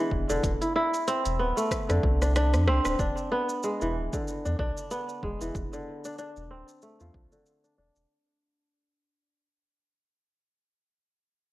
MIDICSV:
0, 0, Header, 1, 4, 480
1, 0, Start_track
1, 0, Tempo, 638298
1, 330, Time_signature, 4, 2, 24, 8
1, 8668, End_track
2, 0, Start_track
2, 0, Title_t, "Kora"
2, 0, Program_c, 0, 46
2, 0, Note_on_c, 0, 50, 76
2, 0, Note_on_c, 0, 52, 67
2, 0, Note_on_c, 0, 56, 85
2, 0, Note_on_c, 0, 59, 101
2, 0, Note_on_c, 0, 62, 105
2, 211, Note_off_c, 0, 50, 0
2, 220, Note_on_c, 0, 50, 84
2, 247, Note_off_c, 0, 52, 0
2, 247, Note_off_c, 0, 56, 0
2, 368, Note_off_c, 0, 50, 0
2, 459, Note_on_c, 0, 64, 81
2, 564, Note_off_c, 0, 64, 0
2, 567, Note_on_c, 0, 64, 105
2, 629, Note_off_c, 0, 62, 0
2, 807, Note_on_c, 0, 60, 98
2, 852, Note_off_c, 0, 59, 0
2, 1046, Note_on_c, 0, 59, 71
2, 1091, Note_off_c, 0, 60, 0
2, 1180, Note_on_c, 0, 57, 73
2, 1421, Note_on_c, 0, 50, 73
2, 1664, Note_on_c, 0, 62, 77
2, 1745, Note_off_c, 0, 64, 0
2, 1769, Note_off_c, 0, 62, 0
2, 1772, Note_on_c, 0, 62, 103
2, 2011, Note_on_c, 0, 60, 113
2, 2056, Note_off_c, 0, 59, 0
2, 2249, Note_off_c, 0, 62, 0
2, 2252, Note_on_c, 0, 62, 89
2, 2287, Note_off_c, 0, 50, 0
2, 2494, Note_on_c, 0, 59, 97
2, 2539, Note_off_c, 0, 60, 0
2, 2681, Note_off_c, 0, 57, 0
2, 2736, Note_on_c, 0, 56, 79
2, 2870, Note_on_c, 0, 52, 73
2, 3109, Note_on_c, 0, 50, 69
2, 3127, Note_off_c, 0, 52, 0
2, 3127, Note_off_c, 0, 56, 0
2, 3345, Note_off_c, 0, 62, 0
2, 3348, Note_on_c, 0, 62, 71
2, 3451, Note_off_c, 0, 62, 0
2, 3454, Note_on_c, 0, 62, 97
2, 3691, Note_off_c, 0, 59, 0
2, 3694, Note_on_c, 0, 59, 97
2, 3936, Note_on_c, 0, 56, 73
2, 4068, Note_on_c, 0, 52, 70
2, 4207, Note_off_c, 0, 52, 0
2, 4207, Note_off_c, 0, 56, 0
2, 4208, Note_off_c, 0, 50, 0
2, 4309, Note_on_c, 0, 50, 70
2, 4546, Note_off_c, 0, 62, 0
2, 4549, Note_on_c, 0, 62, 70
2, 4647, Note_off_c, 0, 62, 0
2, 4650, Note_on_c, 0, 62, 91
2, 4892, Note_on_c, 0, 60, 90
2, 4937, Note_off_c, 0, 59, 0
2, 5132, Note_on_c, 0, 57, 70
2, 5266, Note_on_c, 0, 53, 64
2, 5496, Note_off_c, 0, 50, 0
2, 5505, Note_on_c, 0, 50, 62
2, 5527, Note_off_c, 0, 53, 0
2, 5741, Note_off_c, 0, 62, 0
2, 5744, Note_on_c, 0, 62, 59
2, 5846, Note_off_c, 0, 62, 0
2, 5849, Note_on_c, 0, 62, 86
2, 6127, Note_off_c, 0, 50, 0
2, 6245, Note_off_c, 0, 60, 0
2, 6634, Note_off_c, 0, 57, 0
2, 7112, Note_off_c, 0, 62, 0
2, 8668, End_track
3, 0, Start_track
3, 0, Title_t, "Sub bass"
3, 0, Program_c, 1, 38
3, 87, Note_on_c, 1, 28, 105
3, 185, Note_off_c, 1, 28, 0
3, 223, Note_on_c, 1, 28, 83
3, 300, Note_off_c, 1, 28, 0
3, 327, Note_on_c, 1, 28, 95
3, 425, Note_off_c, 1, 28, 0
3, 944, Note_on_c, 1, 28, 100
3, 1050, Note_on_c, 1, 26, 105
3, 1062, Note_off_c, 1, 28, 0
3, 1147, Note_off_c, 1, 26, 0
3, 1425, Note_on_c, 1, 41, 89
3, 1500, Note_off_c, 1, 41, 0
3, 1529, Note_on_c, 1, 36, 97
3, 1904, Note_on_c, 1, 41, 105
3, 1916, Note_off_c, 1, 36, 0
3, 2010, Note_on_c, 1, 36, 92
3, 2022, Note_off_c, 1, 41, 0
3, 2107, Note_off_c, 1, 36, 0
3, 2145, Note_on_c, 1, 26, 102
3, 2221, Note_off_c, 1, 26, 0
3, 2252, Note_on_c, 1, 28, 88
3, 2348, Note_off_c, 1, 28, 0
3, 2870, Note_on_c, 1, 28, 102
3, 2978, Note_on_c, 1, 26, 103
3, 2989, Note_off_c, 1, 28, 0
3, 3070, Note_off_c, 1, 26, 0
3, 3352, Note_on_c, 1, 40, 80
3, 3424, Note_off_c, 1, 40, 0
3, 3452, Note_on_c, 1, 35, 100
3, 3548, Note_off_c, 1, 35, 0
3, 3933, Note_on_c, 1, 28, 93
3, 4028, Note_off_c, 1, 28, 0
3, 4069, Note_on_c, 1, 28, 84
3, 4143, Note_off_c, 1, 28, 0
3, 4172, Note_on_c, 1, 28, 95
3, 4268, Note_off_c, 1, 28, 0
3, 4789, Note_on_c, 1, 28, 95
3, 4896, Note_on_c, 1, 26, 102
3, 4907, Note_off_c, 1, 28, 0
3, 4990, Note_off_c, 1, 26, 0
3, 5268, Note_on_c, 1, 40, 77
3, 5342, Note_off_c, 1, 40, 0
3, 5370, Note_on_c, 1, 35, 97
3, 5467, Note_off_c, 1, 35, 0
3, 5852, Note_on_c, 1, 28, 98
3, 5947, Note_off_c, 1, 28, 0
3, 5987, Note_on_c, 1, 28, 77
3, 6061, Note_off_c, 1, 28, 0
3, 8668, End_track
4, 0, Start_track
4, 0, Title_t, "Drums"
4, 85, Note_on_c, 9, 36, 60
4, 160, Note_off_c, 9, 36, 0
4, 222, Note_on_c, 9, 82, 72
4, 298, Note_off_c, 9, 82, 0
4, 325, Note_on_c, 9, 36, 112
4, 327, Note_on_c, 9, 42, 72
4, 328, Note_on_c, 9, 82, 53
4, 401, Note_off_c, 9, 36, 0
4, 403, Note_off_c, 9, 42, 0
4, 403, Note_off_c, 9, 82, 0
4, 463, Note_on_c, 9, 42, 47
4, 463, Note_on_c, 9, 82, 34
4, 538, Note_off_c, 9, 42, 0
4, 538, Note_off_c, 9, 82, 0
4, 705, Note_on_c, 9, 42, 33
4, 706, Note_on_c, 9, 82, 69
4, 780, Note_off_c, 9, 42, 0
4, 781, Note_off_c, 9, 82, 0
4, 809, Note_on_c, 9, 42, 68
4, 810, Note_on_c, 9, 82, 55
4, 884, Note_off_c, 9, 42, 0
4, 885, Note_off_c, 9, 82, 0
4, 943, Note_on_c, 9, 42, 44
4, 943, Note_on_c, 9, 82, 33
4, 1018, Note_off_c, 9, 42, 0
4, 1018, Note_off_c, 9, 82, 0
4, 1185, Note_on_c, 9, 82, 66
4, 1260, Note_off_c, 9, 82, 0
4, 1287, Note_on_c, 9, 36, 58
4, 1290, Note_on_c, 9, 37, 63
4, 1290, Note_on_c, 9, 42, 69
4, 1290, Note_on_c, 9, 82, 56
4, 1362, Note_off_c, 9, 36, 0
4, 1365, Note_off_c, 9, 37, 0
4, 1365, Note_off_c, 9, 42, 0
4, 1366, Note_off_c, 9, 82, 0
4, 1426, Note_on_c, 9, 37, 55
4, 1426, Note_on_c, 9, 42, 45
4, 1426, Note_on_c, 9, 82, 32
4, 1501, Note_off_c, 9, 37, 0
4, 1501, Note_off_c, 9, 42, 0
4, 1502, Note_off_c, 9, 82, 0
4, 1528, Note_on_c, 9, 36, 110
4, 1603, Note_off_c, 9, 36, 0
4, 1667, Note_on_c, 9, 37, 63
4, 1667, Note_on_c, 9, 42, 33
4, 1667, Note_on_c, 9, 82, 64
4, 1742, Note_off_c, 9, 37, 0
4, 1742, Note_off_c, 9, 42, 0
4, 1743, Note_off_c, 9, 82, 0
4, 1772, Note_on_c, 9, 37, 80
4, 1772, Note_on_c, 9, 42, 66
4, 1772, Note_on_c, 9, 82, 51
4, 1847, Note_off_c, 9, 37, 0
4, 1847, Note_off_c, 9, 42, 0
4, 1848, Note_off_c, 9, 82, 0
4, 1907, Note_on_c, 9, 37, 83
4, 1907, Note_on_c, 9, 42, 53
4, 1907, Note_on_c, 9, 82, 37
4, 1982, Note_off_c, 9, 37, 0
4, 1982, Note_off_c, 9, 42, 0
4, 1982, Note_off_c, 9, 82, 0
4, 2012, Note_on_c, 9, 37, 96
4, 2087, Note_off_c, 9, 37, 0
4, 2145, Note_on_c, 9, 37, 92
4, 2146, Note_on_c, 9, 82, 68
4, 2220, Note_off_c, 9, 37, 0
4, 2221, Note_off_c, 9, 82, 0
4, 2251, Note_on_c, 9, 36, 111
4, 2252, Note_on_c, 9, 82, 49
4, 2326, Note_off_c, 9, 36, 0
4, 2327, Note_off_c, 9, 82, 0
4, 2386, Note_on_c, 9, 82, 31
4, 2461, Note_off_c, 9, 82, 0
4, 2627, Note_on_c, 9, 82, 67
4, 2703, Note_off_c, 9, 82, 0
4, 2732, Note_on_c, 9, 82, 53
4, 2807, Note_off_c, 9, 82, 0
4, 2869, Note_on_c, 9, 82, 31
4, 2944, Note_off_c, 9, 82, 0
4, 3106, Note_on_c, 9, 36, 102
4, 3107, Note_on_c, 9, 82, 61
4, 3181, Note_off_c, 9, 36, 0
4, 3182, Note_off_c, 9, 82, 0
4, 3215, Note_on_c, 9, 82, 50
4, 3291, Note_off_c, 9, 82, 0
4, 3351, Note_on_c, 9, 82, 31
4, 3426, Note_off_c, 9, 82, 0
4, 3452, Note_on_c, 9, 36, 103
4, 3528, Note_off_c, 9, 36, 0
4, 3591, Note_on_c, 9, 82, 60
4, 3666, Note_off_c, 9, 82, 0
4, 3694, Note_on_c, 9, 82, 50
4, 3769, Note_off_c, 9, 82, 0
4, 3829, Note_on_c, 9, 82, 33
4, 3904, Note_off_c, 9, 82, 0
4, 3933, Note_on_c, 9, 36, 60
4, 4008, Note_off_c, 9, 36, 0
4, 4070, Note_on_c, 9, 82, 65
4, 4145, Note_off_c, 9, 82, 0
4, 4173, Note_on_c, 9, 36, 109
4, 4175, Note_on_c, 9, 82, 51
4, 4248, Note_off_c, 9, 36, 0
4, 4250, Note_off_c, 9, 82, 0
4, 4309, Note_on_c, 9, 82, 32
4, 4384, Note_off_c, 9, 82, 0
4, 4547, Note_on_c, 9, 82, 63
4, 4622, Note_off_c, 9, 82, 0
4, 4652, Note_on_c, 9, 82, 51
4, 4727, Note_off_c, 9, 82, 0
4, 4786, Note_on_c, 9, 82, 31
4, 4861, Note_off_c, 9, 82, 0
4, 5027, Note_on_c, 9, 82, 58
4, 5102, Note_off_c, 9, 82, 0
4, 5130, Note_on_c, 9, 82, 54
4, 5205, Note_off_c, 9, 82, 0
4, 5264, Note_on_c, 9, 82, 30
4, 5340, Note_off_c, 9, 82, 0
4, 5370, Note_on_c, 9, 36, 104
4, 5445, Note_off_c, 9, 36, 0
4, 5506, Note_on_c, 9, 82, 58
4, 5581, Note_off_c, 9, 82, 0
4, 5610, Note_on_c, 9, 82, 47
4, 5686, Note_off_c, 9, 82, 0
4, 5747, Note_on_c, 9, 82, 33
4, 5822, Note_off_c, 9, 82, 0
4, 5984, Note_on_c, 9, 82, 62
4, 6059, Note_off_c, 9, 82, 0
4, 8668, End_track
0, 0, End_of_file